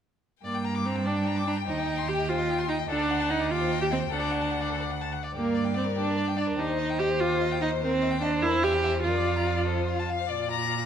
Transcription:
0.44 G2 A#3 D5 G5
0.55 G5
0.65 A#5
0.75 D6
0.85 C4 A#5
0.96 G5
1.06 D4 D5
1.16 G5
1.26 A#5
1.37 D6
1.47 D4 A#5
1.57 G5
1.67 D#2 D#4 C5
1.78 D#5
1.88 G5
1.98 C6
2.08 G4 G5
2.19 D#5
2.29 F4 C5
2.38 D#5
2.49 G5
2.59 C6
2.69 D#4 G5
2.79 D#5
2.89 D2 D4 A4 F#5
2.99 D5
3.10 F#5
3.20 A5
3.29 D#4 F#5
3.39 D5
3.50 D#2 F4 G4 G5
3.60 C5
3.71 D#5
3.80 G4 G5
3.91 C4 D#5
4.00 C5
4.11 D2 D4 A4 F#5
4.20 D5
4.31 F#5
4.41 A5
4.50 F#5
4.61 D5
4.70 A4
4.81 D5
4.91 F#5
5.01 A5
5.13 F#5
5.23 D5
5.34 G2 A#3 G4 D5
5.43 A#4
5.55 D5
5.64 G5
5.74 C4 D5
5.84 A#4
5.96 D4 G4
6.07 A#4
6.17 D5
6.28 G5
6.37 D4 D5
6.47 A#4
6.57 D#2 D#4 G4 C5
6.68 C5
6.78 D#5
6.89 G5
6.99 G4 D#5
7.10 C5
7.20 F4 G4
7.32 C5
7.41 D#5
7.52 G5
7.61 D#4 D#5
7.71 C5
7.81 C4 A#4
7.92 C5
8.02 D#5
8.11 G5
8.22 D4 D#5
8.31 C5
8.41 E2 E4 A#4
8.53 C5
8.63 G4 E5
8.73 G5
8.84 E5
8.95 C5
9.03 F2 F4 A#4 D5
9.16 D5
9.26 F5
9.36 A#5
9.47 F5
9.57 D5
9.66 A4 C5
9.79 C5
9.87 F5
9.99 A5
10.08 F5
10.19 C5
10.28 A#2 F4 D5
10.50 A#5

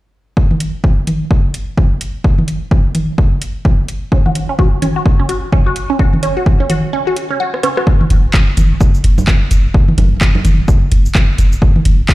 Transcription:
0.37 kick
0.51 high tom
0.60 closed hi-hat
0.84 kick
1.07 closed hi-hat, high tom
1.31 kick
1.54 closed hi-hat
1.78 kick
2.01 closed hi-hat
2.24 kick
2.38 high tom
2.48 closed hi-hat
2.71 kick
2.95 closed hi-hat, high tom
3.18 kick
3.42 closed hi-hat
3.65 kick
3.88 closed hi-hat
4.12 C#4, kick
4.26 F#4, high tom
4.35 closed hi-hat
4.49 C#4
4.59 F#4, kick
4.82 C#4, closed hi-hat, high tom
4.96 F#4
5.06 kick
5.20 C#4
5.29 F#4, closed hi-hat
5.52 C#4, kick
5.66 F#4
5.76 closed hi-hat
5.90 C#4
5.99 F#4, kick
6.13 high tom
6.23 C#4, closed hi-hat
6.37 F#4
6.46 kick
6.60 C#4
6.70 F#4, closed hi-hat, high tom
6.93 C#4
7.07 F#4
7.16 closed hi-hat
7.30 C#4
7.40 F#4
7.54 cross-stick
7.63 C#4, cross-stick, closed hi-hat
7.77 F#4, cross-stick
7.87 kick
8.01 high tom
8.10 F#1, closed hi-hat
8.34 kick, clap
8.57 F#1, closed hi-hat, high tom, cabasa
8.81 kick, cabasa
8.95 cabasa
9.04 F#1, closed hi-hat
9.18 low conga, cabasa
9.27 kick, clap
9.51 F#1, closed hi-hat, cabasa
9.74 kick
9.88 high tom
9.98 F#1, closed hi-hat, low conga
10.21 kick, clap
10.35 low conga
10.45 F#1, closed hi-hat, high tom, cabasa
10.68 kick, cabasa
10.92 F#1, closed hi-hat
11.05 cabasa
11.15 kick, clap
11.38 F#1, closed hi-hat, cabasa
11.52 cabasa
11.62 kick
11.76 high tom
11.85 F#1, closed hi-hat
12.09 kick, clap

